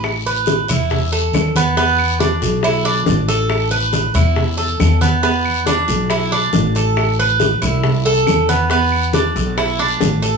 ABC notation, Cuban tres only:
X:1
M:4/4
L:1/8
Q:1/4=138
K:Am
V:1 name="Cuban tres"
z B2 E2 A2 B, | B,2 D2 E D2 A- | A B2 E2 A2 B, | B,2 D2 E D2 A- |
A B2 E2 A2 B, | B,2 D2 E D2 A |]